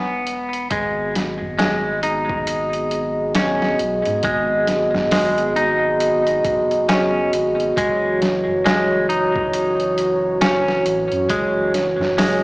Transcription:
0.00 0.67 E1 medium
0.00 0.67 B3 medium
0.27 closed hi-hat medium
0.53 closed hi-hat soft
0.70 3.76 G#1 medium
0.70 1.14 G#3 medium
0.70 7.72 B3 medium
0.70 12.43 F#4 medium
0.70 7.72 G#4 medium
0.70 7.73 D#5 medium
0.70 kick medium
0.70 closed hi-hat medium
1.15 snare medium
1.15 closed hi-hat medium
1.42 tabla ge medium
1.59 1.99 G#3 medium
1.59 snare loud
1.59 closed hi-hat medium
1.59 tabla na medium
2.03 3.32 D#4 medium
2.03 closed hi-hat medium
2.29 kick medium
2.47 closed hi-hat medium
2.73 closed hi-hat soft
2.91 closed hi-hat medium
3.35 3.78 C#4 medium
3.35 snare loud
3.35 closed hi-hat medium
3.35 tabla na medium
3.62 snare soft
3.79 4.03 B1 loud
3.79 closed hi-hat medium
4.05 4.22 G#2 medium
4.05 closed hi-hat soft
4.23 6.41 G#1 loud
4.23 4.67 G#3 medium
4.23 kick loud
4.23 closed hi-hat medium
4.67 snare soft
4.67 closed hi-hat medium
4.95 snare soft
4.95 tabla ge medium
5.11 5.53 G#3 medium
5.11 snare loud
5.11 open hi-hat medium
5.11 tabla na medium
5.38 closed hi-hat soft
5.56 6.85 D#4 medium
5.56 closed hi-hat medium
6.00 closed hi-hat medium
6.27 closed hi-hat soft
6.45 7.29 F#1 medium
6.45 kick medium
6.45 closed hi-hat medium
6.71 closed hi-hat soft
6.89 7.31 C#4 medium
6.89 snare loud
6.89 closed hi-hat medium
6.89 tabla na medium
7.32 7.72 G#1 medium
7.32 closed hi-hat medium
7.60 closed hi-hat soft
7.77 10.83 F#1 loud
7.77 12.43 E3 medium
7.77 8.20 G#3 medium
7.77 12.43 C#5 medium
7.77 kick loud
7.77 closed hi-hat medium
8.22 snare medium
8.22 closed hi-hat medium
8.48 tabla ge medium
8.65 9.06 G#3 loud
8.65 snare loud
8.65 closed hi-hat medium
8.65 tabla na medium
9.09 10.38 D#4 medium
9.09 closed hi-hat medium
9.36 kick medium
9.53 closed hi-hat medium
9.80 closed hi-hat soft
9.98 closed hi-hat medium
10.41 10.84 C#4 medium
10.41 snare loud
10.41 closed hi-hat medium
10.41 tabla na medium
10.68 snare soft
10.86 11.09 A1 loud
10.86 closed hi-hat medium
11.12 11.28 F#2 medium
11.12 closed hi-hat soft
11.29 12.43 F#1 medium
11.29 11.72 G#3 medium
11.29 kick loud
11.29 closed hi-hat medium
11.74 snare soft
11.74 closed hi-hat medium
11.99 snare soft
11.99 tabla ge medium
12.18 12.43 G#3 medium
12.18 snare loud
12.18 open hi-hat medium
12.18 tabla na medium

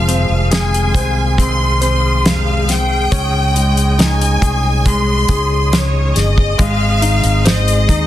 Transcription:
0.00 0.25 F1 medium
0.00 0.49 F2 medium
0.00 0.50 C3 medium
0.00 0.51 D#3 medium
0.00 3.08 F3 medium
0.00 0.51 G#3 medium
0.00 0.51 C4 medium
0.00 0.52 G#4 medium
0.00 8.07 G#4 medium
0.00 0.48 F5 loud
0.00 3.08 F5 medium
0.00 3.08 C6 medium
0.00 8.07 D#6 medium
0.08 1.37 C4 soft
0.08 closed hi-hat medium
0.29 0.90 F1 medium
0.51 1.38 F2 medium
0.51 1.38 C3 medium
0.51 1.37 D#3 medium
0.51 1.38 G#3 medium
0.51 1.37 C4 medium
0.51 2.21 G#4 medium
0.51 1.39 G#4 medium
0.51 1.35 G#5 medium
0.51 snare medium
0.51 closed hi-hat medium
0.74 closed hi-hat soft
0.94 3.08 C2 medium
0.94 1.80 C5 medium
0.94 kick medium
0.94 closed hi-hat medium
1.37 1.81 D#3 medium
1.37 1.81 G#3 medium
1.37 3.08 C4 medium
1.37 1.81 C4 medium
1.37 1.80 G#4 medium
1.37 kick medium
1.37 closed hi-hat medium
1.41 2.27 C6 medium
1.81 2.24 D#3 soft
1.81 2.24 G#3 soft
1.81 2.24 C4 soft
1.81 2.25 G#4 soft
1.81 3.08 C5 medium
1.81 closed hi-hat medium
2.24 2.68 F2 medium
2.24 2.68 C3 medium
2.24 2.68 D#3 medium
2.24 2.68 G#3 medium
2.24 2.67 C4 medium
2.24 2.67 G#4 medium
2.24 2.69 F5 medium
2.24 snare loud
2.24 closed hi-hat medium
2.68 3.12 D#3 soft
2.68 3.11 G#3 soft
2.68 3.12 C4 soft
2.68 3.12 G#4 soft
2.68 4.00 G5 loud
2.68 snare soft
2.68 closed hi-hat medium
3.10 4.38 C#2 medium
3.10 3.99 C#3 medium
3.10 3.98 G#3 medium
3.10 6.55 C#4 medium
3.10 3.97 C#4 medium
3.10 3.99 D#4 medium
3.10 3.99 G#4 medium
3.10 6.55 C#5 medium
3.10 8.07 D#5 medium
3.10 kick medium
3.10 closed hi-hat medium
3.54 4.85 G#3 soft
3.54 closed hi-hat medium
3.77 closed hi-hat medium
3.98 4.84 G#3 medium
3.98 4.85 C#4 medium
3.98 5.68 D#4 medium
3.98 4.86 D#4 medium
3.98 4.87 G#4 medium
3.98 4.87 G#5 loud
3.98 snare medium
3.98 closed hi-hat medium
4.21 closed hi-hat soft
4.42 5.25 C2 medium
4.42 5.27 G#4 medium
4.42 kick medium
4.42 closed hi-hat medium
4.85 5.29 G#3 medium
4.85 6.56 G#3 medium
4.85 5.29 C#4 medium
4.85 5.28 D#4 medium
4.85 5.27 G#4 medium
4.85 5.74 C6 loud
4.85 kick medium
4.85 closed hi-hat medium
5.28 6.12 C#2 medium
5.28 5.72 C#4 soft
5.28 5.72 D#4 soft
5.28 5.72 G#4 medium
5.28 6.55 G#4 medium
5.28 kick medium
5.28 closed hi-hat medium
5.72 6.16 C#3 medium
5.72 6.16 G#3 medium
5.72 6.16 C#4 medium
5.72 6.15 D#4 medium
5.72 6.14 G#4 medium
5.72 6.17 C#5 medium
5.72 snare loud
5.72 closed hi-hat medium
6.15 6.56 G1 medium
6.15 6.59 C#4 soft
6.15 6.59 D#4 soft
6.15 6.59 G#4 soft
6.15 6.60 D#5 medium
6.15 snare soft
6.15 closed hi-hat medium
6.38 kick medium
6.58 7.20 G#1 medium
6.58 7.44 G#2 medium
6.58 7.45 D#3 medium
6.58 8.07 G#3 medium
6.58 7.45 G#3 medium
6.58 7.45 C4 medium
6.58 7.46 D#4 medium
6.58 7.46 G#4 medium
6.58 7.47 F5 loud
6.58 8.07 C6 medium
6.58 kick medium
6.58 closed hi-hat medium
7.02 7.87 D#4 medium
7.02 closed hi-hat medium
7.24 7.86 G#1 medium
7.24 closed hi-hat medium
7.45 8.07 G#2 medium
7.45 8.07 D#3 medium
7.45 8.07 G#3 medium
7.45 8.07 C4 medium
7.45 8.07 D#4 medium
7.45 8.07 G#4 medium
7.45 8.07 C5 medium
7.45 8.07 D#5 medium
7.45 snare loud
7.45 closed hi-hat medium
7.68 closed hi-hat soft
7.89 8.07 D#2 medium
7.89 8.07 D#4 medium
7.89 kick medium
7.89 closed hi-hat medium

